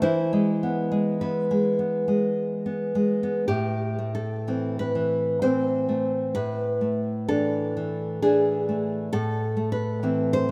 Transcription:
0.02 3.44 E3 medium
0.02 1.17 E4 medium
0.02 1.16 C5 medium
0.33 0.90 G#3 soft
0.63 1.20 B3 soft
0.92 1.50 G#3 medium
1.21 1.78 B3 soft
1.21 2.33 E4 soft
1.21 2.32 B4 medium
1.51 2.07 G#3 soft
1.79 2.65 B3 soft
2.08 2.94 G#3 soft
2.66 3.22 B3 soft
2.95 3.49 G#3 soft
3.23 3.47 B3 soft
3.48 6.33 A2 medium
3.48 4.12 G4 medium
3.99 5.43 A3 soft
4.15 4.77 A4 medium
4.48 4.94 E3 soft
4.48 5.42 C4 soft
4.79 5.40 B4 medium
4.95 5.42 E3 soft
5.42 6.32 E3 soft
5.42 6.33 C4 medium
5.42 6.32 C5 medium
5.89 6.36 A3 soft
6.35 9.08 A2 medium
6.35 7.24 B4 medium
6.81 8.22 A3 soft
7.28 7.76 E3 soft
7.28 8.22 D4 medium
7.28 8.19 A4 medium
7.77 8.22 E3 soft
8.22 9.09 E3 soft
8.22 9.09 D4 soft
8.22 9.09 G#4 medium
8.69 9.13 A3 soft
9.13 10.51 A2 medium
9.13 9.70 A4 medium
9.57 10.51 A3 soft
9.72 10.31 B4 medium
10.03 10.47 E3 soft
10.03 10.51 C4 soft
10.33 10.51 C5 medium

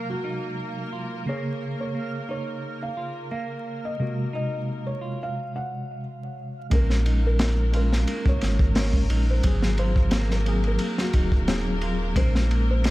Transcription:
0.00 1.23 C3 medium
0.00 1.24 F#3 medium
0.00 1.23 G#3 medium
0.00 0.21 A#3 medium
0.00 5.36 A#3 medium
0.00 5.36 A#4 medium
0.00 5.35 F5 medium
0.10 0.54 F#4 medium
0.24 0.89 D#4 medium
0.93 1.25 F4 medium
1.26 3.95 C#3 medium
1.26 1.92 A#3 medium
1.26 3.96 A#3 medium
1.26 3.97 G#4 medium
1.26 1.74 C#5 medium
1.80 2.25 C#5 medium
1.95 2.25 A#3 medium
2.29 2.94 D#4 medium
2.29 2.76 C#5 medium
2.83 3.27 F5 medium
2.97 3.29 F4 medium
3.31 3.96 A#3 medium
3.31 3.78 F5 medium
3.85 4.29 D#5 medium
4.00 5.36 C3 medium
4.00 5.36 G#3 medium
4.00 4.30 A#3 medium
4.00 5.37 F#4 medium
4.33 4.98 D#4 medium
4.33 4.81 D#5 medium
4.87 5.16 C#5 medium
5.01 5.34 F4 medium
5.23 5.52 F5 medium
5.56 6.00 F#5 medium
6.70 8.05 A#1 medium
6.70 7.69 G#3 medium
6.70 7.03 A#3 medium
6.70 12.90 A#3 medium
6.70 7.70 C#4 medium
6.70 7.71 A#4 medium
6.70 12.90 A#4 medium
6.70 kick loud
6.70 ride medium
6.75 7.20 A#4 medium
6.90 snare soft
7.06 7.71 D#4 medium
7.06 ride medium
7.27 7.71 A#4 medium
7.39 snare loud
7.39 ride medium
7.72 8.72 G#3 medium
7.72 8.72 C#4 medium
7.72 8.07 F4 medium
7.72 8.73 A#4 medium
7.72 ride medium
7.76 8.22 A#4 loud
7.93 snare soft
8.07 8.73 A#3 loud
8.07 ride medium
8.26 8.73 C#5 medium
8.26 kick loud
8.41 9.08 G#1 medium
8.41 snare soft
8.41 ride medium
8.59 kick loud
8.75 9.40 G#3 medium
8.75 9.07 A#3 medium
8.75 9.41 C#4 medium
8.75 9.41 A#4 medium
8.75 9.24 C#5 medium
8.75 snare loud
8.75 open hi-hat medium
8.93 kick medium
9.10 9.41 A#1 loud
9.10 9.44 D#4 medium
9.10 ride medium
9.30 9.75 C5 medium
9.43 10.77 G#1 loud
9.43 10.43 F#3 medium
9.43 10.43 C4 medium
9.43 10.44 G#4 loud
9.43 kick loud
9.43 ride loud
9.62 snare medium
9.78 10.11 F4 medium
9.78 10.26 C5 loud
9.78 ride medium
9.96 kick medium
10.11 10.78 A#3 loud
10.11 snare loud
10.11 ride medium
10.31 10.62 A#4 medium
10.31 snare soft
10.45 11.45 F#3 medium
10.45 11.45 C4 medium
10.45 11.46 G#4 medium
10.45 ride medium
10.64 10.97 A#4 medium
10.64 ride soft
10.79 11.12 A#3 medium
10.79 ride medium
10.98 11.45 F#4 medium
10.98 snare medium
11.13 12.14 D#1 medium
11.13 11.80 D#4 medium
11.13 kick loud
11.13 ride medium
11.32 kick medium
11.48 12.13 F#3 medium
11.48 12.13 C4 medium
11.48 12.14 G#4 medium
11.48 snare loud
11.48 ride medium
11.81 12.16 F4 medium
11.81 ride medium
12.15 12.90 A#1 loud
12.15 12.90 G#3 medium
12.15 12.82 A#3 loud
12.15 12.90 C#4 medium
12.15 12.90 A#4 loud
12.15 12.64 C5 medium
12.15 kick loud
12.15 ride medium
12.35 snare soft
12.51 ride medium
12.71 12.90 C5 loud
12.84 12.90 A#3 medium
12.84 snare loud
12.84 ride medium

